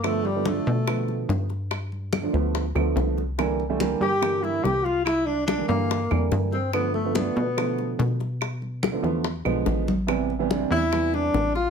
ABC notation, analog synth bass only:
X:1
M:4/4
L:1/8
Q:1/4=143
K:Gmix
V:1 name="Analog synth bass" clef=bass
G,,3 B,,3 G,,2- | G,,3 D,,2 D,, C,,2- | C,,3 G,,3 C,,2- | C,,3 G,,2 F,, G,,2- |
G,,3 B,,3 B,,2- | B,,3 E,,2 B,,, A,,,2- | A,,,3 E,,3 A,,,2 |]